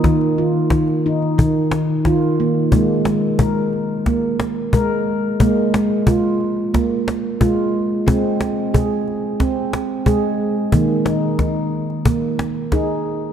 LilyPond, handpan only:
<<
  \new Staff \with { instrumentName = "Handpan" } { \time 4/4 \key aes \major \tempo 4 = 90 ees'8 f'4 ees'4 r8 f'4 | bes4 bes'4 bes4 bes'4 | bes4 f'4 bes4 f'4 | c'4 aes'4 c'4 aes'4 |
bes4 ees'4 bes4 aes'4 | }
  \new Staff \with { instrumentName = "Handpan" } { \clef bass \time 4/4 \key aes \major ees4 ees4 ees4 ees8 bes8 | aes16 r16 aes2 r8 aes4 | aes16 r16 aes2 r8 aes4 | aes16 r16 aes2 r8 aes4 |
ees16 r16 ees'2 r8 ees'4 | }
>>